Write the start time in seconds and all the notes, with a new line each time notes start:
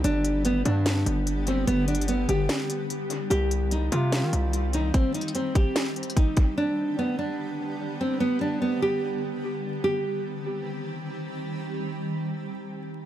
Already playing: G3
0.04 G1 D3 B3 D4 G4, closed hi-hat
0.25 closed hi-hat
0.45 B3, closed hi-hat
0.65 G2 D4, closed hi-hat
0.86 snare, closed hi-hat
1.06 G1, closed hi-hat
1.27 closed hi-hat
1.47 C4, closed hi-hat
1.67 G1 B3, closed hi-hat
1.88 D4, closed hi-hat, open hi-hat
1.95 closed hi-hat
2.02 closed hi-hat
2.08 B3, closed hi-hat
2.29 G1 G4, closed hi-hat
2.49 snare, closed hi-hat
2.70 closed hi-hat
2.90 closed hi-hat
3.10 closed hi-hat
3.30 C2 D#3 C4 G4, closed hi-hat
3.51 closed hi-hat
3.71 D#4, closed hi-hat
3.92 C3 F4, closed hi-hat
4.12 snare, closed hi-hat
4.23 D#3
4.33 C2, closed hi-hat
4.53 closed hi-hat
4.73 D#4, closed hi-hat
4.94 C4, kick, closed hi-hat
5.14 D#4, closed hi-hat, open hi-hat
5.21 closed hi-hat
5.28 closed hi-hat
5.35 C4, closed hi-hat
5.55 G4, kick, closed hi-hat
5.76 snare, closed hi-hat
5.96 closed hi-hat
6.03 closed hi-hat
6.10 closed hi-hat
6.17 D#4, kick, closed hi-hat
6.37 kick, closed hi-hat
6.57 D3 G3 B3 D4
6.99 B3
7.19 D4
8.01 C4
8.20 B3
8.41 D4
8.62 B3
8.82 G4
9.84 D#3 G3 C4 G4